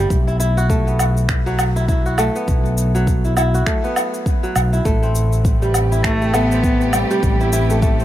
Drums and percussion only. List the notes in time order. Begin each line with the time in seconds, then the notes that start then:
0.10 kick, cabasa
0.28 cabasa
0.40 cabasa
0.58 cabasa
0.70 kick, cabasa
0.87 cabasa
0.99 cabasa, low woodblock
1.17 cabasa
1.29 finger snap, kick, cabasa
1.47 cabasa
1.59 cabasa, low woodblock
1.76 cabasa
1.88 kick, cabasa
2.06 cabasa
2.18 cabasa, low woodblock
2.36 cabasa
2.48 kick, cabasa
2.65 cabasa
2.78 cabasa
2.95 cabasa
3.07 kick, cabasa
3.25 cabasa
3.37 cabasa, low woodblock
3.54 cabasa
3.67 finger snap, kick, cabasa
3.84 cabasa
3.96 cabasa, low woodblock
4.14 cabasa
4.26 kick, cabasa
4.44 cabasa
4.56 cabasa, low woodblock
4.73 cabasa
4.85 kick, cabasa
5.03 cabasa
5.15 cabasa
5.32 cabasa
5.45 kick, cabasa
5.62 cabasa
5.74 cabasa, low woodblock
5.92 cabasa
6.04 finger snap, kick, cabasa
6.22 cabasa
6.34 cabasa, low woodblock
6.51 cabasa
6.63 kick, cabasa
6.81 cabasa
6.93 cabasa, low woodblock
7.11 cabasa
7.23 kick, cabasa
7.40 cabasa
7.53 cabasa
7.70 cabasa
7.82 kick, cabasa
8.00 cabasa